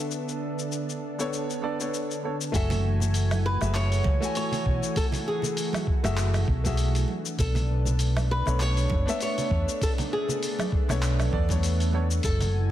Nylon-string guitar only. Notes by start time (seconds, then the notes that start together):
Already playing: F#4
2.55 A4
3.46 B4
3.76 C#5
4.37 C#5
4.97 A4
5.28 G#4
7.40 A4
8.31 B4
8.62 C#5
9.22 C#5
9.83 A4
10.13 G#4
12.24 A4